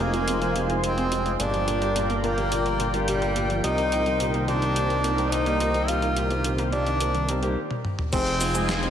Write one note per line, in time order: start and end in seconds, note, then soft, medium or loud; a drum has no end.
0.00 1.37 F1 medium
0.00 0.11 C3 loud
0.00 0.11 G#3 medium
0.00 0.72 A#3 medium
0.00 0.11 C4 medium
0.00 0.11 D#4 medium
0.00 0.11 F4 medium
0.00 1.37 F4 medium
0.00 0.72 A#4 medium
0.00 1.37 C5 medium
0.00 1.36 D#5 medium
0.00 1.37 G#5 medium
0.00 closed hi-hat soft
0.13 0.25 F3 medium
0.13 0.25 G#3 medium
0.13 0.25 C4 medium
0.13 0.25 D#4 medium
0.13 0.25 F4 medium
0.13 closed hi-hat soft
0.28 0.39 C3 medium
0.28 0.39 G#3 medium
0.28 0.39 C4 medium
0.28 0.39 D#4 medium
0.28 0.39 F4 medium
0.28 closed hi-hat medium
0.42 0.55 F3 medium
0.42 closed hi-hat soft
0.56 0.63 C3 loud
0.56 0.67 G#3 medium
0.56 0.67 C4 medium
0.56 0.67 D#4 medium
0.56 0.67 G4 medium
0.56 closed hi-hat medium
0.70 0.94 G#3 medium
0.70 0.77 G#3 medium
0.70 0.94 C4 medium
0.70 0.94 D#4 medium
0.70 0.94 F4 medium
0.70 closed hi-hat soft
0.84 0.97 C3 loud
0.84 1.32 C4 medium
0.84 1.32 C5 medium
0.84 closed hi-hat medium
0.98 1.10 G#3 medium
0.98 1.10 C4 medium
0.98 1.11 C4 loud
0.98 1.10 D#4 medium
0.98 1.10 F4 medium
0.98 closed hi-hat soft
1.12 1.23 C3 medium
1.12 1.36 G#3 medium
1.12 1.36 C4 medium
1.12 1.36 D#4 medium
1.12 1.36 F4 medium
1.12 closed hi-hat medium
1.26 1.37 F3 medium
1.26 closed hi-hat soft
1.40 3.61 G1 medium
1.40 1.51 A#2 medium
1.40 1.57 A#3 medium
1.40 1.57 D4 medium
1.40 2.13 D4 medium
1.40 1.57 F4 medium
1.40 3.62 F4 medium
1.40 1.57 G4 medium
1.40 3.62 A#4 medium
1.40 2.13 D5 medium
1.40 3.62 D5 medium
1.40 7.53 G5 medium
1.40 closed hi-hat medium
1.54 1.67 F3 medium
1.54 closed hi-hat soft
1.68 1.75 A#2 loud
1.68 1.80 A#3 medium
1.68 1.80 D4 medium
1.68 1.80 F4 medium
1.68 1.80 G4 medium
1.68 closed hi-hat medium
1.82 1.89 G3 medium
1.82 1.92 A#3 medium
1.82 1.92 D4 medium
1.82 1.92 F4 medium
1.82 1.92 G4 medium
1.82 closed hi-hat soft
1.96 2.09 A#2 medium
1.96 2.20 A#3 medium
1.96 2.20 D4 medium
1.96 2.20 F4 medium
1.96 2.20 G4 medium
1.96 closed hi-hat medium
2.10 2.23 A#3 loud
2.10 closed hi-hat soft
2.24 2.36 A#2 loud
2.24 2.36 A#3 medium
2.24 2.97 A#3 medium
2.24 2.36 D4 medium
2.24 2.36 F4 medium
2.24 2.36 G4 medium
2.24 2.97 A#4 medium
2.24 closed hi-hat soft
2.38 2.50 F3 medium
2.38 2.49 A#3 medium
2.38 2.49 D4 medium
2.38 2.49 F4 medium
2.38 2.49 G4 medium
2.38 closed hi-hat soft
2.52 2.64 A#2 medium
2.52 2.63 A#3 medium
2.52 2.63 D4 medium
2.52 2.63 F4 medium
2.52 2.63 G4 medium
2.52 closed hi-hat medium
2.66 2.79 F3 medium
2.66 closed hi-hat soft
2.80 2.87 A#2 loud
2.80 2.91 A#3 medium
2.80 2.91 D4 medium
2.80 2.91 F4 medium
2.80 2.91 A#4 medium
2.80 closed hi-hat medium
2.94 3.01 G3 medium
2.94 3.19 A#3 medium
2.94 3.19 D4 medium
2.94 3.19 F4 medium
2.94 3.19 G4 loud
2.94 closed hi-hat soft
3.08 3.21 A#2 loud
3.08 3.56 G3 medium
3.08 3.56 G4 medium
3.08 closed hi-hat medium
3.22 3.34 A#3 medium
3.22 3.35 A#3 loud
3.22 3.34 D4 medium
3.22 3.34 F4 medium
3.22 3.34 G4 medium
3.22 closed hi-hat soft
3.36 3.48 A#2 loud
3.36 3.61 A#3 medium
3.36 3.61 D4 medium
3.36 3.61 F4 medium
3.36 3.61 G4 medium
3.36 closed hi-hat medium
3.50 3.62 F3 medium
3.50 closed hi-hat soft
3.64 7.57 C2 medium
3.64 3.76 A#2 medium
3.64 7.53 D#3 medium
3.64 3.82 A#3 medium
3.64 3.82 C4 medium
3.64 3.82 D#4 medium
3.64 4.37 D#4 medium
3.64 3.82 G4 medium
3.64 7.53 A#4 medium
3.64 7.53 C5 medium
3.64 4.37 D#5 medium
3.64 closed hi-hat medium
3.78 3.91 D#3 medium
3.78 closed hi-hat soft
3.92 3.99 A#2 loud
3.92 4.04 A#3 medium
3.92 4.04 C4 medium
3.92 4.04 D#4 medium
3.92 4.04 G4 medium
3.92 closed hi-hat medium
4.06 4.13 G3 medium
4.06 4.17 A#3 medium
4.06 4.17 C4 medium
4.06 4.17 D#4 medium
4.06 4.17 G4 medium
4.06 closed hi-hat soft
4.20 4.33 A#2 medium
4.20 4.45 A#3 medium
4.20 4.45 C4 medium
4.20 4.45 D#4 medium
4.20 4.45 G4 medium
4.20 closed hi-hat medium
4.34 4.47 A#3 loud
4.34 closed hi-hat soft
4.48 4.60 A#2 loud
4.48 4.60 A#3 medium
4.48 4.60 C4 medium
4.48 5.34 D4 medium
4.48 4.60 D#4 medium
4.48 4.60 G4 medium
4.48 5.32 D5 medium
4.48 closed hi-hat soft
4.62 4.74 D#3 medium
4.62 4.73 A#3 medium
4.62 4.73 C4 medium
4.62 4.73 D#4 medium
4.62 4.73 G4 medium
4.62 closed hi-hat soft
4.76 4.88 A#2 medium
4.76 4.87 A#3 medium
4.76 4.87 C4 medium
4.76 4.87 D#4 medium
4.76 4.87 G4 medium
4.76 closed hi-hat medium
4.90 5.04 D#3 medium
4.90 closed hi-hat soft
5.04 5.11 A#2 loud
5.04 5.15 A#3 medium
5.04 5.15 C4 medium
5.04 5.15 D#4 medium
5.04 5.15 A#4 medium
5.04 closed hi-hat medium
5.18 5.25 G3 medium
5.18 5.43 A#3 medium
5.18 5.43 C4 medium
5.18 5.43 D#4 medium
5.18 5.43 G4 loud
5.18 closed hi-hat soft
5.32 5.46 A#2 medium
5.32 5.90 D#4 medium
5.32 5.88 D#5 medium
5.32 closed hi-hat medium
5.46 5.60 A#3 loud
5.46 5.58 A#3 medium
5.46 5.58 C4 medium
5.46 5.58 D#4 medium
5.46 5.58 G4 medium
5.46 closed hi-hat soft
5.60 5.72 A#2 loud
5.60 5.85 A#3 medium
5.60 5.85 C4 medium
5.60 5.85 D#4 medium
5.60 5.85 G4 medium
5.60 closed hi-hat medium
5.74 5.86 D#3 medium
5.74 closed hi-hat soft
5.88 6.00 A#2 medium
5.88 6.06 A#3 medium
5.88 6.06 C4 medium
5.88 6.06 D#4 medium
5.88 6.61 F4 medium
5.88 6.06 G4 medium
5.88 6.61 F5 medium
5.88 closed hi-hat medium
6.02 6.16 D#3 medium
6.02 closed hi-hat soft
6.16 6.23 A#2 medium
6.16 6.28 A#3 medium
6.16 6.28 C4 medium
6.16 6.28 D#4 medium
6.16 6.28 G4 medium
6.16 closed hi-hat medium
6.30 6.37 G3 medium
6.30 6.41 A#3 medium
6.30 6.41 C4 medium
6.30 6.41 D#4 medium
6.30 6.41 G4 medium
6.30 closed hi-hat soft
6.44 6.58 A#2 medium
6.44 6.69 A#3 medium
6.44 6.69 C4 medium
6.44 6.69 D#4 medium
6.44 6.69 G4 medium
6.44 closed hi-hat medium
6.58 6.72 A#3 loud
6.58 closed hi-hat soft
6.72 6.84 A#2 loud
6.72 6.84 A#3 medium
6.72 6.84 C4 medium
6.72 7.45 D4 medium
6.72 6.84 D#4 medium
6.72 6.84 G4 medium
6.72 7.45 D5 medium
6.72 closed hi-hat soft
6.86 6.98 D#3 medium
6.86 6.98 A#3 medium
6.86 6.98 C4 medium
6.86 6.98 D#4 medium
6.86 6.98 G4 medium
6.86 closed hi-hat soft
7.00 7.12 A#2 medium
7.00 7.12 A#3 medium
7.00 7.12 C4 medium
7.00 7.12 D#4 medium
7.00 7.12 G4 medium
7.00 closed hi-hat medium
7.15 7.28 D#3 medium
7.15 closed hi-hat soft
7.29 7.40 G3 medium
7.29 7.40 A#3 medium
7.29 7.40 C4 medium
7.29 7.40 D#4 medium
7.29 7.40 A#4 medium
7.29 closed hi-hat medium
7.43 7.56 A#2 medium
7.43 7.57 A#3 medium
7.43 7.57 C4 medium
7.43 7.57 D#4 medium
7.43 7.57 G4 loud
7.43 closed hi-hat soft
7.71 high tom soft
7.85 mid tom medium
7.99 mid tom medium
8.13 8.90 F1 medium
8.13 8.26 C3 loud
8.13 8.86 C4 loud
8.13 8.30 C4 medium
8.13 8.30 D#4 medium
8.13 8.90 F4 medium
8.13 8.30 F4 medium
8.13 8.30 G#4 medium
8.13 8.85 C5 loud
8.13 8.90 C5 medium
8.13 8.90 D#5 medium
8.13 8.90 G#5 medium
8.13 kick loud
8.13 closed hi-hat loud
8.13 crash loud
8.13 shaker soft
8.27 8.38 F3 medium
8.27 closed hi-hat soft
8.41 8.48 C3 medium
8.41 8.53 C4 medium
8.41 8.53 D#4 medium
8.41 8.53 F4 medium
8.41 8.53 G#4 medium
8.41 open hi-hat medium
8.41 shaker medium
8.55 8.66 G#3 medium
8.55 8.65 C4 medium
8.55 8.65 D#4 medium
8.55 8.65 F4 medium
8.55 8.65 G#4 medium
8.55 closed hi-hat soft
8.55 shaker soft
8.69 8.76 C3 medium
8.69 8.90 C4 medium
8.69 8.90 D#4 medium
8.69 8.90 F4 medium
8.69 8.90 G#4 medium
8.69 snare loud
8.69 closed hi-hat medium
8.69 shaker soft
8.83 8.90 C4 medium
8.83 closed hi-hat soft